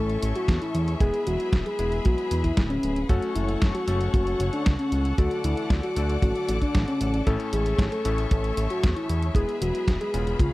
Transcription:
Already playing: analog synth bass A1, electric grand piano A2 A3 C#4 E4 A4, soft synth lead A4, string section A4 C#5 E5 C#6
0.09 closed hi-hat
0.22 analog synth bass A1, closed hi-hat
0.36 soft synth lead F#4, closed hi-hat
0.48 analog synth bass E2, kick, snare, closed hi-hat
0.62 soft synth lead E4, closed hi-hat
0.75 analog synth bass E2, closed hi-hat
0.88 closed hi-hat
1.00 analog synth bass E1, electric grand piano G#3 B3 E4 G#4, soft synth lead G#4, string section G#4 B4 B5, kick, closed hi-hat
1.14 closed hi-hat
1.27 analog synth bass E1, soft synth lead F#4, closed hi-hat
1.40 closed hi-hat
1.53 analog synth bass E1, kick, snare, closed hi-hat
1.66 soft synth lead G#4, snare, closed hi-hat
1.79 analog synth bass E1, electric grand piano G#3 B3 E4 G#4, closed hi-hat
1.92 closed hi-hat
2.05 analog synth bass B1, soft synth lead F#4, kick, closed hi-hat
2.18 closed hi-hat
2.31 analog synth bass E2, closed hi-hat
2.44 soft synth lead E4, kick, closed hi-hat
2.57 analog synth bass D1, kick, snare, closed hi-hat
2.70 soft synth lead C#4, closed hi-hat
2.83 analog synth bass D1, closed hi-hat
2.96 closed hi-hat
3.09 analog synth bass F#1, electric grand piano A3 C#4 F#4 A4, soft synth lead F#4, string section A4 C#5 F#5 C#6, kick, closed hi-hat
3.23 closed hi-hat
3.35 analog synth bass F#1, soft synth lead E4, closed hi-hat
3.49 closed hi-hat
3.62 analog synth bass F#1, kick, snare, closed hi-hat
3.74 soft synth lead F#4, snare, closed hi-hat
3.88 analog synth bass F#1, electric grand piano A3 C#4 F#4 A4, closed hi-hat
4.01 closed hi-hat
4.14 analog synth bass F#1, soft synth lead F#4, kick, closed hi-hat
4.27 closed hi-hat
4.40 analog synth bass F#1, closed hi-hat
4.53 soft synth lead D4, closed hi-hat
4.66 analog synth bass C#2, kick, snare, closed hi-hat
4.79 soft synth lead C#4, closed hi-hat
4.92 analog synth bass C#2, closed hi-hat
5.05 closed hi-hat
5.18 analog synth bass D2, electric grand piano D3 A3 D4 F#4 A4, soft synth lead F#4, string section D5 D6, kick, closed hi-hat
5.31 closed hi-hat
5.44 analog synth bass D2, soft synth lead E4, closed hi-hat
5.57 closed hi-hat
5.70 analog synth bass D2, kick, snare, closed hi-hat
5.83 soft synth lead F#4, closed hi-hat
5.96 analog synth bass D2, electric grand piano D3 A3 D4 F#4 A4, closed hi-hat
6.10 closed hi-hat
6.22 analog synth bass A1, soft synth lead F#4, kick, closed hi-hat
6.36 closed hi-hat
6.49 analog synth bass A1, closed hi-hat
6.62 soft synth lead D4, kick, closed hi-hat
6.75 analog synth bass A1, kick, snare, closed hi-hat
6.88 soft synth lead C#4, closed hi-hat
7.01 analog synth bass A1, closed hi-hat
7.14 closed hi-hat
7.27 analog synth bass A1, electric grand piano A2 A3 C#4 E4 A4, soft synth lead A4, string section C#5 E5 C#6, kick, closed hi-hat
7.40 closed hi-hat
7.53 analog synth bass A1, soft synth lead G#4, closed hi-hat
7.66 closed hi-hat
7.78 analog synth bass A1, kick, snare, closed hi-hat
7.92 soft synth lead A4, snare, closed hi-hat
8.05 analog synth bass A1, electric grand piano A2 A3 C#4 E4 A4, closed hi-hat
8.18 closed hi-hat
8.31 analog synth bass A1, soft synth lead A4, kick, closed hi-hat
8.44 closed hi-hat
8.57 analog synth bass A1, closed hi-hat
8.70 soft synth lead F#4, closed hi-hat
8.83 analog synth bass E2, kick, snare, closed hi-hat
8.96 soft synth lead E4, closed hi-hat
9.09 analog synth bass E2, closed hi-hat
9.22 closed hi-hat
9.35 analog synth bass E1, electric grand piano G#3 B3 E4 G#4, soft synth lead G#4, string section G#4 B4 B5, kick, closed hi-hat
9.49 closed hi-hat
9.61 analog synth bass E1, soft synth lead F#4, closed hi-hat
9.75 closed hi-hat
9.88 analog synth bass E1, kick, snare, closed hi-hat
10.00 soft synth lead G#4, snare, closed hi-hat
10.14 analog synth bass E1, electric grand piano C#3 B3 C#4 F4 G#4, closed hi-hat
10.27 closed hi-hat
10.39 analog synth bass C#2, soft synth lead F4, string section G#4 C#5 F5, kick, closed hi-hat

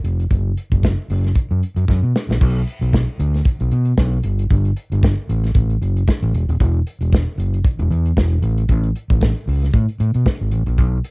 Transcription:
0.04 fingered electric bass F1, closed hi-hat
0.20 closed hi-hat
0.30 fingered electric bass F#1, kick, closed hi-hat
0.57 closed hi-hat
0.72 fingered electric bass F#1, kick, closed hi-hat
0.83 kick, snare
1.10 fingered electric bass F#1, open hi-hat
1.24 snare, closed hi-hat
1.35 kick, closed hi-hat
1.51 fingered electric bass F#2
1.63 closed hi-hat
1.76 fingered electric bass F#2, closed hi-hat
1.88 fingered electric bass F#2, kick, snare
2.02 fingered electric bass B2
2.16 snare
2.29 fingered electric bass A#1, snare
2.41 fingered electric bass B1, kick, crash
2.68 closed hi-hat
2.81 fingered electric bass B1, closed hi-hat
2.93 kick, snare
3.20 fingered electric bass D2, closed hi-hat
3.34 snare, closed hi-hat
3.45 kick, closed hi-hat
3.60 fingered electric bass B1, closed hi-hat
3.71 fingered electric bass B2, closed hi-hat
3.85 closed hi-hat
3.98 fingered electric bass B1, kick, snare
4.13 closed hi-hat
4.24 fingered electric bass G1, closed hi-hat
4.39 closed hi-hat
4.50 fingered electric bass G1, kick, closed hi-hat
4.65 closed hi-hat
4.77 closed hi-hat
4.92 fingered electric bass G1, closed hi-hat
5.03 kick, snare
5.29 fingered electric bass A1, closed hi-hat
5.44 snare, closed hi-hat
5.54 fingered electric bass A1, kick, closed hi-hat
5.70 closed hi-hat
5.82 fingered electric bass F#1, closed hi-hat
5.97 closed hi-hat
6.08 kick, snare
6.23 fingered electric bass A1
6.34 fingered electric bass E1, closed hi-hat
6.49 fingered electric bass D#1, closed hi-hat
6.60 fingered electric bass E1, kick, closed hi-hat
6.87 closed hi-hat
7.01 fingered electric bass E1, closed hi-hat
7.12 kick, snare
7.38 fingered electric bass F#1, closed hi-hat
7.54 closed hi-hat
7.64 kick, closed hi-hat
7.79 fingered electric bass E1, closed hi-hat
7.90 fingered electric bass E2, closed hi-hat
8.05 closed hi-hat
8.17 fingered electric bass E1, kick, snare
8.32 closed hi-hat
8.42 fingered electric bass A1, closed hi-hat
8.58 closed hi-hat
8.69 fingered electric bass A1, kick, closed hi-hat
8.84 closed hi-hat
8.96 closed hi-hat
9.10 fingered electric bass A1, kick, closed hi-hat
9.21 kick, snare
9.36 closed hi-hat
9.47 fingered electric bass C#2, open hi-hat
9.62 snare, closed hi-hat
9.73 fingered electric bass A2, kick, closed hi-hat
9.89 closed hi-hat
10.00 fingered electric bass A2, closed hi-hat
10.14 fingered electric bass B2, closed hi-hat
10.26 kick, snare
10.41 fingered electric bass G#1
10.51 fingered electric bass A1, closed hi-hat
10.66 fingered electric bass A#1, closed hi-hat
10.78 fingered electric bass B1, kick, closed hi-hat
11.04 closed hi-hat

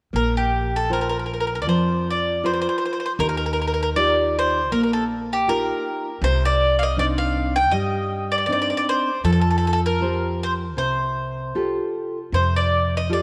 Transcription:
0.13 upright bass A#1, nylon-string guitar A#3, mandolin A#4
0.37 mandolin G4
0.76 mandolin A4
0.90 nylon-string guitar F4 A#4 C5, mandolin A#4
1.01 mandolin A#4
1.09 mandolin A#4
1.19 mandolin A#4
1.26 mandolin A#4
1.34 mandolin A#4
1.40 mandolin A#4
1.47 mandolin A#4
1.55 mandolin A#4
1.62 mandolin D5
1.66 upright bass F2, nylon-string guitar F3, mandolin C5
2.10 mandolin D5
2.44 nylon-string guitar F4 A#4 C5, mandolin C5
2.54 mandolin C5
2.62 mandolin C5
2.69 mandolin C5
2.78 mandolin C5
2.85 mandolin C5
2.93 mandolin C5
3.00 mandolin C5
3.06 mandolin C5
3.19 upright bass D#2, nylon-string guitar D#3, mandolin A#4
3.29 mandolin A#4
3.37 mandolin A#4
3.46 mandolin A#4
3.53 mandolin A#4
3.62 mandolin A#4
3.67 mandolin A#4
3.74 mandolin A#4
3.83 mandolin A#4
3.96 nylon-string guitar D#4 F4 G4, mandolin D5
4.39 mandolin C5
4.72 upright bass A#1, nylon-string guitar A#3, mandolin A#4
4.83 mandolin A#4
4.93 mandolin A4
5.33 mandolin G4
5.47 nylon-string guitar D#4 F4 G4, mandolin A#4
6.22 upright bass C2, nylon-string guitar C3, mandolin C5
6.45 mandolin D5
6.79 mandolin F5
6.83 mandolin D#5
6.97 nylon-string guitar C4 D4 D#4, mandolin D5
7.18 mandolin F5
7.56 mandolin G5
7.71 upright bass G2, nylon-string guitar G3, mandolin D#5
8.32 mandolin D5
8.38 mandolin D5
8.46 nylon-string guitar C4 D4 D#4, mandolin D5
8.52 mandolin D5
8.62 mandolin D5
8.70 mandolin D5
8.77 mandolin D5
8.89 mandolin C5
9.24 upright bass F2, nylon-string guitar F3, mandolin A4
9.33 mandolin A4
9.41 mandolin A4
9.51 mandolin A4
9.58 mandolin A4
9.67 mandolin A4
9.73 mandolin A4
9.86 mandolin A#4
10.00 nylon-string guitar F4 G4 C5
10.43 mandolin C5
10.77 upright bass C2, nylon-string guitar C3, mandolin C5
11.55 nylon-string guitar F4 G4 A4
12.32 upright bass F2, nylon-string guitar C3, mandolin C5
12.56 mandolin D5
12.97 mandolin D#5
13.09 nylon-string guitar F4 G4 A4, mandolin D5

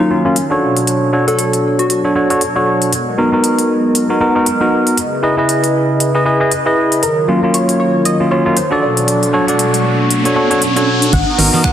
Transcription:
Already playing: analog synth pad D#3 F#3 F4 A#4 C#5
0.00 soft synth lead D#4
0.10 tine electric piano F#3 A#3 C#4 F4
0.25 tine electric piano F#3 A#3 C#4 F4, soft synth lead C#4
0.36 closed hi-hat
0.50 tine electric piano D4 F#4 A4 C#5
0.62 analog synth pad B2 D4 A4
0.77 closed hi-hat
0.87 closed hi-hat
1.13 tine electric piano D4 F#4 A4 C#5
1.27 tine electric piano D4 F#4 A4 C#5, soft synth lead A4, closed hi-hat
1.39 closed hi-hat
1.53 closed hi-hat
1.79 soft synth lead F#4, closed hi-hat
1.90 soft synth lead F#4, closed hi-hat
2.04 tine electric piano D4 F#4 A4 C#5
2.15 tine electric piano D4 F#4 A4 C#5
2.30 tine electric piano D4 F#4 A4 C#5, closed hi-hat
2.41 closed hi-hat
2.56 tine electric piano D4 F#4 A4 C#5
2.82 closed hi-hat
2.93 analog synth pad G#3 B3 A#4 D#5, closed hi-hat
3.18 tine electric piano B3 D#4 F#4 A#4
3.32 tine electric piano B3 D#4 F#4 A#4
3.44 closed hi-hat
3.59 closed hi-hat
3.95 closed hi-hat
4.09 tine electric piano B3 D#4 F#4 A#4
4.20 tine electric piano B3 D#4 F#4 A#4
4.35 tine electric piano B3 D#4 F#4 A#4
4.46 closed hi-hat
4.61 tine electric piano B3 D#4 F#4 A#4
4.87 closed hi-hat
4.97 analog synth pad C#3 E4 G#4 B4, closed hi-hat
5.23 tine electric piano E4 G#4 B4 D#5
5.37 tine electric piano E4 G#4 B4 D#5
5.49 closed hi-hat
5.64 closed hi-hat
6.00 closed hi-hat
6.15 tine electric piano E4 G#4 B4 D#5
6.25 tine electric piano E4 G#4 B4 D#5
6.40 tine electric piano E4 G#4 B4 D#5
6.51 closed hi-hat
6.66 tine electric piano E4 G#4 B4 D#5
6.92 closed hi-hat
7.03 analog synth pad D#3 F#3 F4 A#4 C#5, synth pluck A#4, closed hi-hat, riser
7.28 tine electric piano F#3 A#3 C#4 F4
7.42 tine electric piano F#3 A#3 C#4 F4
7.54 synth pluck C#5, closed hi-hat
7.69 closed hi-hat
7.80 synth pluck C#5
8.05 synth pluck D#5, closed hi-hat
8.20 tine electric piano F#3 A#3 C#4 F4
8.30 tine electric piano F#3 A#3 C#4 F4, synth pluck C#5
8.45 tine electric piano F#3 A#3 C#4 F4
8.57 synth pluck C5, closed hi-hat
8.71 tine electric piano D4 F#4 A4 D5
8.82 analog synth pad B2 D4 A4 C#6, synth pluck D5
8.97 closed hi-hat
9.08 closed hi-hat
9.23 closed hi-hat
9.33 tine electric piano D4 F#4 A4 C#5
9.48 tine electric piano D4 F#4 A4 D5, closed hi-hat
9.59 closed hi-hat
9.74 closed hi-hat
10.10 closed hi-hat
10.25 tine electric piano D4 F#4 A4 C#5, closed hi-hat
10.36 tine electric piano D4 F#4 A4 C#5
10.50 tine electric piano D4 F#4 A4 C#5, closed hi-hat
10.62 closed hi-hat
10.76 tine electric piano D4 F#4 A4 C#5, closed hi-hat
11.02 closed hi-hat
11.13 fm bass G#1, analog synth pad B3 F#4 A#5 D#6, synth pluck F#5, kick, closed hi-hat, crash
11.38 fm bass G#1, tine electric piano B3 D#4 F#4 A#4, open hi-hat
11.53 tine electric piano B3 D#4 F#4 A#4, low conga
11.64 synth pluck F#5, finger snap, kick

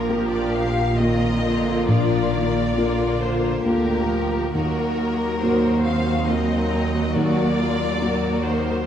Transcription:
Already playing: felt piano A#1, double bass section A#1, cello section A#2, viola section F3 A#3, french horn section A#3 F4, violin section A#4
0.08 felt piano A#3 F4 A#4, violin section G4
0.31 violin section D5
0.54 violin section F5
0.97 viola section D#3 C4, felt piano A#3 F4 A#4, violin section F4 A#4 D#5
1.44 viola section D3
1.87 felt piano A#1, viola section F3 A#3, violin section A#4 D5
2.33 viola section D#3
2.77 viola section D3 A#3, felt piano A#3 F4 A#4, violin section F4
3.21 viola section A#3, violin section C5
3.64 cello section D2, double bass section D2, viola section D3 A#3, felt piano A#3 F4 A#4, violin section G4 A#4
4.09 viola section F3
4.53 cello section D#2, double bass section D#2, felt piano D#2, viola section D#3 A#3, french horn section F#3 A#3, violin section F#4 A#4
4.98 viola section A#3
5.40 viola section D#3 A#3, felt piano A#3 F#4 A#4, violin section F#4 C5
5.85 viola section C4, violin section F5
6.28 viola section F#3, felt piano A#3 F#4 A#4, violin section D#4 A#4 D#5
7.14 felt piano D#2, viola section A#3, violin section F#4 A#4 D5
7.58 violin section F4
8.01 viola section F#3 A#3, felt piano A#3 F#4 A#4, violin section F#4
8.44 viola section D#3, violin section C5

